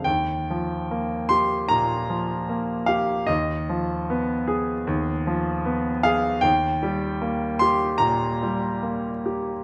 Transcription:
0, 0, Header, 1, 2, 480
1, 0, Start_track
1, 0, Tempo, 837989
1, 31, Time_signature, 4, 2, 24, 8
1, 510, Tempo, 802139
1, 2430, Tempo, 783290
1, 4830, Tempo, 837989
1, 5759, End_track
2, 0, Start_track
2, 0, Title_t, "Grand piano"
2, 0, Program_c, 0, 0
2, 0, Control_c, 0, 64, 127
2, 25, Note_on_c, 0, 79, 69
2, 34, Note_on_c, 0, 39, 42
2, 42, Control_c, 0, 64, 0
2, 125, Control_c, 0, 64, 127
2, 288, Note_on_c, 0, 53, 38
2, 523, Note_on_c, 0, 58, 42
2, 661, Note_off_c, 0, 53, 0
2, 747, Note_off_c, 0, 79, 0
2, 748, Note_on_c, 0, 84, 78
2, 757, Note_on_c, 0, 67, 38
2, 901, Note_off_c, 0, 58, 0
2, 968, Note_off_c, 0, 39, 0
2, 985, Note_on_c, 0, 82, 85
2, 990, Note_off_c, 0, 84, 0
2, 1000, Note_on_c, 0, 46, 43
2, 1139, Note_off_c, 0, 67, 0
2, 1232, Note_on_c, 0, 53, 37
2, 1381, Note_off_c, 0, 46, 0
2, 1469, Note_on_c, 0, 58, 43
2, 1615, Note_off_c, 0, 53, 0
2, 1691, Note_on_c, 0, 77, 72
2, 1703, Note_on_c, 0, 67, 38
2, 1707, Note_off_c, 0, 82, 0
2, 1852, Note_off_c, 0, 58, 0
2, 1931, Note_on_c, 0, 75, 70
2, 1939, Note_off_c, 0, 77, 0
2, 1940, Note_on_c, 0, 39, 52
2, 1945, Note_off_c, 0, 67, 0
2, 1959, Control_c, 0, 64, 0
2, 2063, Control_c, 0, 64, 127
2, 2188, Note_on_c, 0, 53, 47
2, 2430, Note_on_c, 0, 59, 48
2, 2578, Note_off_c, 0, 53, 0
2, 2661, Note_on_c, 0, 68, 49
2, 2821, Note_off_c, 0, 59, 0
2, 2888, Note_off_c, 0, 39, 0
2, 2904, Note_on_c, 0, 39, 57
2, 3052, Note_off_c, 0, 68, 0
2, 3148, Note_on_c, 0, 53, 49
2, 3382, Note_on_c, 0, 59, 45
2, 3530, Note_off_c, 0, 53, 0
2, 3616, Note_on_c, 0, 77, 85
2, 3619, Note_off_c, 0, 75, 0
2, 3625, Note_on_c, 0, 68, 49
2, 3766, Note_off_c, 0, 59, 0
2, 3836, Note_off_c, 0, 39, 0
2, 3847, Note_on_c, 0, 79, 84
2, 3859, Note_on_c, 0, 39, 52
2, 3860, Note_off_c, 0, 77, 0
2, 3865, Note_off_c, 0, 68, 0
2, 3875, Control_c, 0, 64, 0
2, 3983, Control_c, 0, 64, 127
2, 4102, Note_on_c, 0, 55, 45
2, 4341, Note_on_c, 0, 58, 48
2, 4490, Note_off_c, 0, 55, 0
2, 4571, Note_on_c, 0, 84, 89
2, 4579, Note_off_c, 0, 79, 0
2, 4585, Note_on_c, 0, 67, 48
2, 4728, Note_off_c, 0, 58, 0
2, 4802, Note_off_c, 0, 39, 0
2, 4807, Note_on_c, 0, 82, 86
2, 4821, Note_on_c, 0, 46, 49
2, 4822, Note_off_c, 0, 84, 0
2, 4967, Note_off_c, 0, 67, 0
2, 5066, Note_on_c, 0, 55, 41
2, 5198, Note_off_c, 0, 46, 0
2, 5295, Note_on_c, 0, 58, 38
2, 5441, Note_off_c, 0, 55, 0
2, 5541, Note_on_c, 0, 67, 34
2, 5688, Note_off_c, 0, 58, 0
2, 5759, Note_off_c, 0, 67, 0
2, 5759, Note_off_c, 0, 82, 0
2, 5759, End_track
0, 0, End_of_file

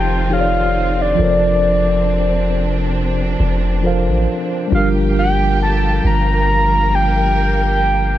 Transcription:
0, 0, Header, 1, 5, 480
1, 0, Start_track
1, 0, Key_signature, -2, "major"
1, 0, Tempo, 882353
1, 650, Time_signature, 4, 2, 24, 8
1, 4450, End_track
2, 0, Start_track
2, 0, Title_t, "Soft synth lead"
2, 0, Program_c, 0, 80
2, 0, Note_on_c, 0, 79, 96
2, 175, Note_off_c, 0, 79, 0
2, 180, Note_on_c, 0, 77, 108
2, 552, Note_on_c, 0, 74, 86
2, 560, Note_off_c, 0, 77, 0
2, 1505, Note_off_c, 0, 74, 0
2, 2581, Note_on_c, 0, 77, 93
2, 2658, Note_off_c, 0, 77, 0
2, 2821, Note_on_c, 0, 79, 99
2, 3039, Note_off_c, 0, 79, 0
2, 3060, Note_on_c, 0, 81, 106
2, 3279, Note_off_c, 0, 81, 0
2, 3300, Note_on_c, 0, 82, 110
2, 3780, Note_on_c, 0, 79, 110
2, 3788, Note_off_c, 0, 82, 0
2, 4450, Note_off_c, 0, 79, 0
2, 4450, End_track
3, 0, Start_track
3, 0, Title_t, "Tine electric piano"
3, 0, Program_c, 1, 4
3, 0, Control_c, 1, 64, 127
3, 0, Note_on_c, 1, 53, 76
3, 0, Note_on_c, 1, 63, 72
3, 0, Note_on_c, 1, 67, 71
3, 0, Note_on_c, 1, 69, 70
3, 0, Note_on_c, 1, 77, 83
3, 136, Note_off_c, 1, 53, 0
3, 143, Note_off_c, 1, 63, 0
3, 149, Note_off_c, 1, 67, 0
3, 159, Note_on_c, 1, 53, 46
3, 162, Note_off_c, 1, 77, 0
3, 165, Note_on_c, 1, 63, 44
3, 171, Note_off_c, 1, 69, 0
3, 172, Note_on_c, 1, 67, 43
3, 178, Note_on_c, 1, 69, 44
3, 184, Note_on_c, 1, 73, 43
3, 215, Note_off_c, 1, 73, 0
3, 220, Note_on_c, 1, 74, 52
3, 619, Note_off_c, 1, 53, 0
3, 626, Note_on_c, 1, 53, 65
3, 635, Note_on_c, 1, 65, 58
3, 639, Note_off_c, 1, 69, 0
3, 646, Note_on_c, 1, 69, 65
3, 647, Note_off_c, 1, 63, 0
3, 651, Note_off_c, 1, 67, 0
3, 656, Note_on_c, 1, 70, 64
3, 657, Control_c, 1, 64, 0
3, 666, Note_on_c, 1, 72, 58
3, 675, Note_off_c, 1, 74, 0
3, 676, Note_on_c, 1, 73, 58
3, 701, Note_off_c, 1, 73, 0
3, 712, Note_on_c, 1, 74, 76
3, 741, Control_c, 1, 64, 127
3, 2056, Note_off_c, 1, 53, 0
3, 2061, Note_off_c, 1, 65, 0
3, 2066, Note_off_c, 1, 69, 0
3, 2071, Note_off_c, 1, 70, 0
3, 2076, Note_off_c, 1, 72, 0
3, 2079, Note_on_c, 1, 53, 54
3, 2084, Note_on_c, 1, 65, 48
3, 2089, Note_on_c, 1, 69, 50
3, 2094, Note_on_c, 1, 70, 52
3, 2099, Note_off_c, 1, 74, 0
3, 2100, Note_on_c, 1, 72, 50
3, 2104, Note_on_c, 1, 77, 57
3, 2545, Note_on_c, 1, 55, 64
3, 2558, Note_on_c, 1, 62, 61
3, 2564, Note_off_c, 1, 53, 0
3, 2564, Note_off_c, 1, 65, 0
3, 2569, Note_off_c, 1, 69, 0
3, 2570, Note_on_c, 1, 65, 62
3, 2572, Note_off_c, 1, 70, 0
3, 2575, Note_off_c, 1, 72, 0
3, 2577, Note_off_c, 1, 77, 0
3, 2577, Control_c, 1, 64, 0
3, 2583, Note_on_c, 1, 67, 62
3, 2596, Note_on_c, 1, 70, 74
3, 2681, Control_c, 1, 64, 127
3, 4450, Note_off_c, 1, 55, 0
3, 4450, Note_off_c, 1, 62, 0
3, 4450, Note_off_c, 1, 65, 0
3, 4450, Note_off_c, 1, 67, 0
3, 4450, Note_off_c, 1, 70, 0
3, 4450, End_track
4, 0, Start_track
4, 0, Title_t, "String section"
4, 0, Program_c, 2, 48
4, 0, Note_on_c, 2, 51, 75
4, 0, Note_on_c, 2, 60, 71
4, 0, Note_on_c, 2, 65, 78
4, 628, Note_off_c, 2, 51, 0
4, 629, Note_off_c, 2, 65, 0
4, 649, Note_on_c, 2, 48, 69
4, 650, Note_on_c, 2, 62, 73
4, 2548, Note_off_c, 2, 60, 0
4, 2550, Note_off_c, 2, 48, 0
4, 2550, Note_off_c, 2, 62, 0
4, 2569, Note_on_c, 2, 53, 66
4, 2569, Note_on_c, 2, 58, 65
4, 2569, Note_on_c, 2, 67, 75
4, 3520, Note_off_c, 2, 67, 0
4, 3529, Note_on_c, 2, 70, 76
4, 4450, Note_off_c, 2, 53, 0
4, 4450, Note_off_c, 2, 58, 0
4, 4450, Note_off_c, 2, 70, 0
4, 4450, End_track
5, 0, Start_track
5, 0, Title_t, "808-style bass"
5, 0, Program_c, 3, 38
5, 0, Note_on_c, 3, 29, 100
5, 628, Note_off_c, 3, 29, 0
5, 650, Note_on_c, 3, 29, 108
5, 1828, Note_off_c, 3, 29, 0
5, 1850, Note_on_c, 3, 29, 105
5, 2220, Note_on_c, 3, 33, 96
5, 2228, Note_off_c, 3, 29, 0
5, 2325, Note_off_c, 3, 33, 0
5, 2570, Note_on_c, 3, 31, 110
5, 3268, Note_off_c, 3, 31, 0
5, 3289, Note_on_c, 3, 31, 100
5, 4450, Note_off_c, 3, 31, 0
5, 4450, End_track
0, 0, End_of_file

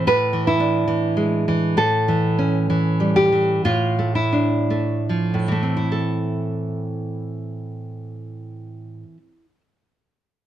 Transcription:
0, 0, Header, 1, 2, 480
1, 0, Start_track
1, 0, Key_signature, 0, "minor"
1, 0, Tempo, 811908
1, 33, Time_signature, 2, 2, 24, 8
1, 513, Tempo, 906344
1, 1473, Tempo, 944882
1, 1953, Tempo, 1052632
1, 2433, Tempo, 1214575
1, 2913, Tempo, 1156069
1, 4812, End_track
2, 0, Start_track
2, 0, Title_t, "Nylon-string guitar"
2, 0, Program_c, 0, 24
2, 41, Note_on_c, 0, 45, 45
2, 44, Note_on_c, 0, 71, 77
2, 195, Note_on_c, 0, 52, 39
2, 266, Note_off_c, 0, 71, 0
2, 279, Note_on_c, 0, 64, 63
2, 354, Note_on_c, 0, 62, 44
2, 511, Note_off_c, 0, 52, 0
2, 517, Note_on_c, 0, 52, 41
2, 671, Note_on_c, 0, 56, 40
2, 831, Note_off_c, 0, 52, 0
2, 837, Note_on_c, 0, 52, 38
2, 978, Note_off_c, 0, 45, 0
2, 978, Note_off_c, 0, 64, 0
2, 991, Note_on_c, 0, 45, 50
2, 994, Note_on_c, 0, 69, 72
2, 997, Note_off_c, 0, 62, 0
2, 998, Note_off_c, 0, 52, 0
2, 998, Note_off_c, 0, 56, 0
2, 1156, Note_on_c, 0, 52, 43
2, 1317, Note_on_c, 0, 61, 40
2, 1475, Note_off_c, 0, 52, 0
2, 1481, Note_on_c, 0, 52, 40
2, 1635, Note_on_c, 0, 55, 39
2, 1688, Note_off_c, 0, 69, 0
2, 1717, Note_on_c, 0, 67, 66
2, 1793, Note_off_c, 0, 52, 0
2, 1799, Note_on_c, 0, 52, 40
2, 1930, Note_off_c, 0, 45, 0
2, 1947, Note_off_c, 0, 67, 0
2, 1955, Note_off_c, 0, 61, 0
2, 1956, Note_off_c, 0, 55, 0
2, 1957, Note_off_c, 0, 52, 0
2, 1963, Note_on_c, 0, 45, 48
2, 1964, Note_on_c, 0, 65, 63
2, 2118, Note_on_c, 0, 57, 37
2, 2181, Note_off_c, 0, 65, 0
2, 2193, Note_on_c, 0, 64, 53
2, 2272, Note_on_c, 0, 62, 35
2, 2438, Note_off_c, 0, 57, 0
2, 2443, Note_on_c, 0, 57, 33
2, 2597, Note_on_c, 0, 53, 32
2, 2690, Note_off_c, 0, 45, 0
2, 2694, Note_on_c, 0, 45, 39
2, 2750, Note_on_c, 0, 52, 30
2, 2759, Note_off_c, 0, 57, 0
2, 2762, Note_off_c, 0, 53, 0
2, 2764, Note_on_c, 0, 57, 28
2, 2808, Note_on_c, 0, 60, 30
2, 2858, Note_off_c, 0, 64, 0
2, 2863, Note_on_c, 0, 64, 32
2, 2916, Note_off_c, 0, 62, 0
2, 2917, Note_off_c, 0, 57, 0
2, 2923, Note_on_c, 0, 69, 38
2, 4214, Note_off_c, 0, 45, 0
2, 4273, Note_off_c, 0, 52, 0
2, 4334, Note_off_c, 0, 60, 0
2, 4392, Note_off_c, 0, 64, 0
2, 4454, Note_off_c, 0, 69, 0
2, 4812, End_track
0, 0, End_of_file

